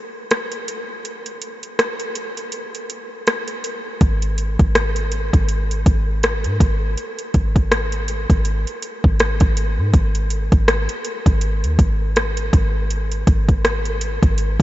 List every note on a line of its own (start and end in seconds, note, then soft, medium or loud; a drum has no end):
0.31 cross-stick loud
0.31 closed hi-hat medium
0.52 closed hi-hat soft
0.68 closed hi-hat medium
1.05 closed hi-hat medium
1.26 closed hi-hat soft
1.42 closed hi-hat medium
1.63 closed hi-hat soft
1.79 cross-stick loud
1.79 closed hi-hat medium
2.00 closed hi-hat soft
2.15 closed hi-hat medium
2.37 closed hi-hat medium
2.52 closed hi-hat medium
2.75 closed hi-hat soft
2.90 closed hi-hat medium
3.27 cross-stick loud
3.27 closed hi-hat medium
3.48 closed hi-hat soft
3.64 closed hi-hat medium
4.01 4.57 G#1 loud
4.01 kick loud
4.01 closed hi-hat medium
4.22 closed hi-hat medium
4.38 closed hi-hat medium
4.59 5.31 G#1 loud
4.59 kick medium
4.59 closed hi-hat soft
4.75 cross-stick loud
4.75 closed hi-hat medium
4.96 closed hi-hat soft
5.12 closed hi-hat medium
5.33 5.84 G#1 loud
5.33 kick medium
5.33 closed hi-hat soft
5.49 closed hi-hat medium
5.71 closed hi-hat soft
5.86 6.47 G#1 medium
5.86 kick medium
5.86 closed hi-hat medium
6.23 cross-stick loud
6.23 closed hi-hat medium
6.44 6.60 G#2 loud
6.44 closed hi-hat soft
6.60 6.96 G#1 medium
6.60 kick loud
6.60 closed hi-hat medium
6.98 closed hi-hat medium
7.19 closed hi-hat medium
7.34 8.26 G#1 loud
7.34 kick medium
7.34 closed hi-hat medium
7.56 kick medium
7.56 closed hi-hat soft
7.72 cross-stick loud
7.72 closed hi-hat medium
7.92 closed hi-hat soft
8.08 closed hi-hat medium
8.30 8.65 G#1 loud
8.30 kick medium
8.30 closed hi-hat medium
8.45 closed hi-hat medium
8.67 closed hi-hat soft
8.82 closed hi-hat medium
9.04 9.40 G#1 loud
9.04 kick medium
9.20 cross-stick loud
9.20 closed hi-hat medium
9.40 9.79 G#1 loud
9.40 kick loud
9.40 closed hi-hat medium
9.57 closed hi-hat medium
9.78 9.93 G#2 loud
9.94 10.50 G#1 loud
9.94 kick loud
9.94 closed hi-hat medium
10.15 closed hi-hat soft
10.30 closed hi-hat medium
10.52 10.88 G#1 loud
10.52 kick medium
10.52 closed hi-hat soft
10.68 cross-stick loud
10.68 closed hi-hat medium
10.89 closed hi-hat soft
11.05 closed hi-hat medium
11.26 11.65 G#1 loud
11.26 kick medium
11.26 closed hi-hat soft
11.41 closed hi-hat medium
11.63 11.78 D#2 loud
11.63 closed hi-hat soft
11.79 12.50 G#1 loud
11.79 kick medium
11.79 closed hi-hat medium
12.16 cross-stick loud
12.16 closed hi-hat medium
12.37 closed hi-hat soft
12.53 13.24 G#1 loud
12.53 kick loud
12.53 closed hi-hat medium
12.90 closed hi-hat medium
13.12 closed hi-hat medium
13.27 14.19 G#1 loud
13.27 kick medium
13.27 closed hi-hat medium
13.49 kick medium
13.49 closed hi-hat soft
13.65 cross-stick loud
13.65 closed hi-hat medium
13.85 closed hi-hat soft
14.01 closed hi-hat medium
14.23 14.58 G#1 loud
14.23 kick medium
14.23 closed hi-hat soft
14.38 closed hi-hat medium